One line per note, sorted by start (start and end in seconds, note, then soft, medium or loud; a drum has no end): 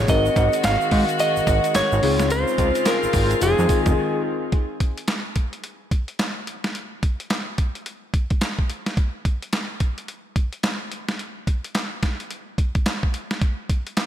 0.00 3.38 G#3 medium
0.08 0.30 G#1 loud
0.08 2.01 D#3 medium
0.08 1.98 C4 medium
0.08 1.99 D#4 medium
0.08 2.01 F#4 medium
0.08 1.99 F#4 medium
0.08 2.00 A#4 medium
0.08 0.61 D#5 loud
0.08 kick loud
0.08 closed hi-hat medium
0.08 tambourine medium
0.08 shaker medium
0.25 shaker medium
0.36 0.49 G#1 loud
0.36 kick medium
0.36 closed hi-hat medium
0.36 shaker soft
0.53 closed hi-hat medium
0.53 shaker medium
0.64 0.77 G#1 loud
0.64 1.20 F5 loud
0.64 snare loud
0.64 clap medium
0.64 closed hi-hat medium
0.64 tambourine loud
0.64 shaker medium
0.81 shaker soft
0.91 1.05 G#2 loud
0.91 kick medium
0.91 open hi-hat medium
0.91 tambourine medium
1.09 closed hi-hat medium
1.09 shaker medium
1.19 1.76 D#5 medium
1.19 closed hi-hat medium
1.19 tambourine medium
1.19 shaker medium
1.36 1.41 G#1 soft
1.36 shaker medium
1.47 1.60 G#1 medium
1.47 kick loud
1.47 closed hi-hat medium
1.47 tambourine medium
1.47 shaker medium
1.64 closed hi-hat soft
1.64 shaker medium
1.75 1.82 G#1 medium
1.75 2.31 C#5 medium
1.75 snare loud
1.75 clap medium
1.75 closed hi-hat medium
1.75 tambourine medium
1.75 shaker medium
1.92 2.00 G#1 medium
1.92 shaker medium
2.02 2.45 C#2 medium
2.02 3.40 C#3 medium
2.02 3.38 C4 medium
2.02 4.50 C4 medium
2.02 3.39 D#4 medium
2.02 4.50 F4 medium
2.02 3.39 F4 medium
2.02 3.40 G#4 medium
2.02 open hi-hat medium
2.02 tambourine medium
2.19 snare medium
2.19 closed hi-hat medium
2.19 shaker medium
2.30 2.88 C5 loud
2.30 closed hi-hat medium
2.30 tambourine medium
2.30 shaker medium
2.48 shaker medium
2.58 2.71 C#2 loud
2.58 kick medium
2.58 closed hi-hat medium
2.58 shaker soft
2.75 closed hi-hat medium
2.75 shaker medium
2.85 3.42 A#4 medium
2.85 snare loud
2.85 clap medium
2.85 closed hi-hat medium
2.85 tambourine loud
2.85 shaker medium
3.03 3.08 G#1 soft
3.03 shaker medium
3.13 3.35 G#1 medium
3.13 kick medium
3.13 open hi-hat medium
3.13 tambourine medium
3.13 shaker medium
3.31 closed hi-hat soft
3.31 shaker medium
3.41 3.55 F1 medium
3.41 4.52 D#3 medium
3.41 4.52 G#3 medium
3.41 4.50 C4 medium
3.41 4.50 D#4 medium
3.41 4.51 F4 medium
3.41 4.21 G#4 medium
3.41 4.51 G#4 medium
3.41 closed hi-hat medium
3.41 tambourine medium
3.41 shaker medium
3.59 3.67 F2 medium
3.59 shaker medium
3.69 kick medium
3.69 closed hi-hat medium
3.69 tambourine medium
3.69 shaker medium
3.86 3.95 F1 medium
3.86 kick loud
3.86 closed hi-hat medium
3.86 shaker medium
4.52 kick loud
4.52 closed hi-hat medium
4.80 kick medium
4.80 closed hi-hat medium
4.98 closed hi-hat medium
5.08 snare loud
5.08 clap medium
5.08 closed hi-hat medium
5.36 kick medium
5.36 closed hi-hat medium
5.53 closed hi-hat soft
5.64 closed hi-hat medium
5.91 kick medium
5.91 closed hi-hat medium
6.08 closed hi-hat soft
6.19 snare loud
6.19 clap medium
6.19 closed hi-hat medium
6.47 closed hi-hat medium
6.64 snare medium
6.64 closed hi-hat medium
6.75 closed hi-hat medium
7.03 kick medium
7.03 closed hi-hat medium
7.20 closed hi-hat medium
7.30 snare medium
7.30 clap medium
7.30 closed hi-hat medium
7.58 kick medium
7.58 closed hi-hat medium
7.75 closed hi-hat soft
7.86 closed hi-hat medium
8.14 kick medium
8.14 closed hi-hat medium
8.30 kick medium
8.30 closed hi-hat soft
8.41 snare medium
8.41 clap medium
8.41 closed hi-hat medium
8.59 kick medium
8.70 closed hi-hat medium
8.86 snare medium
8.86 closed hi-hat medium
8.97 kick loud
8.97 closed hi-hat medium
9.25 kick medium
9.25 closed hi-hat medium
9.42 closed hi-hat medium
9.53 snare medium
9.53 clap medium
9.53 closed hi-hat medium
9.80 kick medium
9.80 closed hi-hat medium
9.98 closed hi-hat soft
10.08 closed hi-hat medium
10.36 kick medium
10.36 closed hi-hat medium
10.53 closed hi-hat soft
10.63 snare loud
10.63 clap medium
10.63 closed hi-hat medium
10.92 closed hi-hat medium
11.08 snare medium
11.08 closed hi-hat medium
11.19 closed hi-hat medium
11.47 kick medium
11.47 closed hi-hat medium
11.64 closed hi-hat soft
11.75 snare medium
11.75 clap medium
11.75 closed hi-hat medium
12.03 kick medium
12.03 snare medium
12.03 closed hi-hat medium
12.20 closed hi-hat soft
12.31 closed hi-hat medium
12.58 kick loud
12.58 closed hi-hat medium
12.75 kick medium
12.75 closed hi-hat soft
12.86 snare loud
12.86 clap medium
12.86 closed hi-hat medium
13.03 kick medium
13.14 closed hi-hat medium
13.31 snare medium
13.31 closed hi-hat medium
13.42 kick loud
13.42 closed hi-hat medium
13.70 kick medium
13.70 closed hi-hat medium
13.87 closed hi-hat soft
13.97 snare loud
13.97 clap medium
13.97 closed hi-hat medium